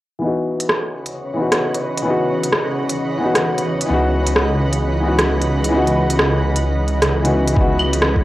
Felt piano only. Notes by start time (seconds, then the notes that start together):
0.19 E3 B3
0.24 D#4 F#4
1.34 E3 B3
1.39 D#4 F#4
2.02 E3 B3
2.08 D#4 F#4
3.18 E3 B3
3.23 D#4 F#4
3.86 E3 B3
3.91 D#4 F#4
5.00 E3 B3
5.06 D#4 F#4
5.69 E3 B3
5.74 D#4 F#4
7.22 E3 B3 D#4
7.27 F#4
7.53 E3 B3
7.58 D#4 F#4